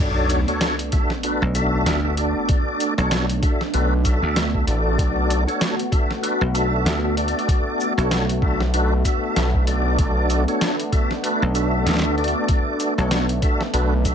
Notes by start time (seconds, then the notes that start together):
Already playing: D5
0.00 B1 A3 B3 D4 F#4 A4 C#5, sub drop
0.30 closed hi-hat, shaker
0.48 D4 F#4 A4 C#5, closed hi-hat
0.61 snare, closed hi-hat
0.79 closed hi-hat
0.92 D4 F#4 A4 E5, kick, closed hi-hat
1.10 snare
1.23 D4 F#4 A4 B4, closed hi-hat
1.42 B1
1.55 D4 F#4 A4 E5, closed hi-hat, shaker
1.86 D2, snare, closed hi-hat
2.05 D4 F#4 A4 E5
2.17 D4 F#4 A4 D5, closed hi-hat
2.49 kick, closed hi-hat
2.80 closed hi-hat, shaker
2.98 B1 D4 F#4 A4 C#5, closed hi-hat
3.11 snare, closed hi-hat
3.29 closed hi-hat
3.42 D4 F#4 A4 E5, kick, closed hi-hat
3.61 snare
3.74 B1 D4 F#4 A4 B4, closed hi-hat
4.05 D4 F#4 A4 E5, kick, closed hi-hat, shaker
4.22 D2
4.36 snare, closed hi-hat
4.54 D4 F#4 A4 E5, kick
4.67 A1 D4 F#4 A4 D5, closed hi-hat
4.99 B1 F#4, kick, closed hi-hat
5.30 closed hi-hat, shaker
5.47 D4 F#4 A4 C#5, closed hi-hat
5.61 snare, closed hi-hat
5.79 closed hi-hat
5.92 D4 F#4 A4 E5, kick, closed hi-hat
6.11 snare
6.23 D4 F#4 A4 B4, closed hi-hat
6.41 B1
6.54 D4 F#4 A4 E5, closed hi-hat, shaker
6.85 D2, snare, closed hi-hat
7.04 D4 F#4 A4 E5
7.17 D4 F#4 A4 D5, closed hi-hat
7.28 closed hi-hat
7.39 closed hi-hat
7.48 kick, closed hi-hat
7.80 shaker
7.98 B1 D4 F#4 A4 C#5, closed hi-hat
8.11 snare, closed hi-hat
8.29 closed hi-hat
8.42 B1 D4 F#4 A4 E5, kick
8.61 snare
8.74 D4 F#4 A4 B4, closed hi-hat
9.05 D4 F#4 A4 E5, kick, closed hi-hat, shaker
9.36 B1, snare, closed hi-hat
9.54 D4 F#4 A4 E5, kick
9.67 D4 F#4 A4 D5, closed hi-hat
9.98 B1 D4, kick, closed hi-hat
10.30 closed hi-hat, shaker
10.48 D4 F#4 A4 C#5, closed hi-hat
10.61 snare, closed hi-hat
10.79 closed hi-hat
10.92 D4 F#4 A4 E5, kick, closed hi-hat
11.11 snare
11.23 D4 F#4 A4 B4, closed hi-hat
11.42 B1
11.55 D4 F#4 A4 E5, closed hi-hat, shaker
11.86 D2, snare, closed hi-hat
11.89 snare
11.91 snare
11.94 snare
11.97 snare
11.99 snare
12.02 D4 F#4 A4 E5, snare
12.18 D4 F#4 A4 D5, closed hi-hat
12.24 closed hi-hat
12.28 closed hi-hat
12.48 kick, closed hi-hat
12.80 closed hi-hat, shaker
12.98 B1 D4 F#4 A4 C#5, closed hi-hat
13.11 snare, closed hi-hat
13.29 closed hi-hat
13.42 D4 F#4 A4 E5, kick, closed hi-hat
13.61 snare
13.73 B1 D4 F#4 A4 B4, closed hi-hat
14.05 D4 F#4 A4 E5, kick, closed hi-hat, shaker